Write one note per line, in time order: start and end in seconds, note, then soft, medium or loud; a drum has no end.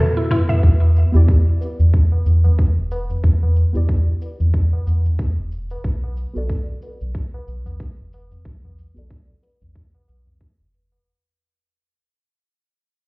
0.00 0.59 B3 medium
0.00 0.59 F#4 medium
0.00 0.16 A4 medium
0.00 0.58 B4 medium
0.17 0.29 E4 medium
0.30 0.47 E4 loud
0.30 mid tom loud
0.30 tabla tin soft
0.30 low woodblock medium
0.30 shaker medium
0.49 0.62 E5 loud
0.49 mid tom medium
0.49 open hi-hat medium
0.49 tabla na medium
0.49 shaker soft
0.63 1.05 E2 loud
0.63 kick medium
0.63 shaker soft
0.80 tabla na medium
0.96 shaker medium
1.12 1.54 E2 medium
1.12 2.39 B3 medium
1.12 2.40 E4 medium
1.12 2.40 G4 medium
1.12 shaker soft
1.16 2.41 D5 medium
1.28 kick loud
1.28 shaker soft
1.61 tabla tin medium
1.61 shaker medium
1.79 2.19 E2 medium
1.79 shaker soft
1.94 kick medium
1.94 shaker soft
2.12 tabla na medium
2.26 2.79 E2 loud
2.26 shaker medium
2.44 tabla na medium
2.44 tabla ge medium
2.44 shaker soft
2.59 kick loud
2.59 shaker soft
2.77 3.16 E1 medium
2.91 tabla na medium
2.91 shaker medium
3.10 tabla ge medium
3.10 shaker soft
3.24 3.65 E2 medium
3.24 kick loud
3.24 shaker soft
3.43 tabla na medium
3.43 tabla ge medium
3.56 shaker medium
3.73 4.14 E2 medium
3.73 5.00 B3 medium
3.73 5.00 E4 medium
3.73 5.01 G4 medium
3.73 5.02 D5 medium
3.73 shaker soft
3.89 kick loud
3.89 shaker soft
4.22 tabla tin medium
4.22 shaker medium
4.40 4.79 E2 medium
4.40 tabla ge medium
4.40 shaker soft
4.54 kick medium
4.54 shaker soft
4.73 tabla na medium
4.87 5.39 E2 loud
4.87 tabla na medium
4.87 shaker medium
5.05 tabla ge loud
5.05 shaker soft
5.19 kick loud
5.19 shaker soft
5.38 5.77 E1 medium
5.52 shaker medium
5.70 tabla na medium
5.70 shaker soft
5.84 6.26 B1 loud
5.84 kick medium
5.84 shaker soft
6.04 tabla na medium
6.17 shaker medium
6.33 6.75 B1 medium
6.33 7.60 B3 medium
6.33 7.61 F#4 medium
6.33 7.62 A4 medium
6.33 shaker soft
6.38 7.62 D5 medium
6.49 kick loud
6.49 shaker soft
6.82 tabla tin medium
6.82 shaker medium
7.01 7.40 B1 medium
7.01 shaker soft
7.15 kick medium
7.15 shaker soft
7.34 tabla na medium
7.47 8.00 B1 medium
7.47 shaker medium
7.66 tabla na medium
7.66 tabla ge medium
7.66 shaker soft
7.80 kick loud
7.80 shaker soft
7.98 8.38 F#1 medium
8.13 tabla na medium
8.13 shaker medium
8.31 tabla ge medium
8.31 shaker soft
8.45 8.87 B1 medium
8.45 kick medium
8.45 shaker soft
8.64 tabla na medium
8.64 tabla ge loud
8.78 shaker medium
8.94 9.36 B1 medium
8.94 10.21 B3 medium
8.94 10.22 F#4 medium
8.94 10.23 A4 medium
8.94 shaker soft
8.98 10.23 D5 medium
9.10 kick medium
9.10 shaker soft
9.43 tabla tin medium
9.43 shaker medium
9.61 10.01 B1 medium
9.61 tabla ge medium
9.61 shaker soft
9.75 kick medium
9.94 tabla na medium
10.08 10.50 B1 loud
10.08 tabla na medium
10.08 shaker medium
10.26 tabla ge medium
10.41 kick loud
10.59 10.99 F#1 medium
10.74 tabla tin soft
10.92 tabla na medium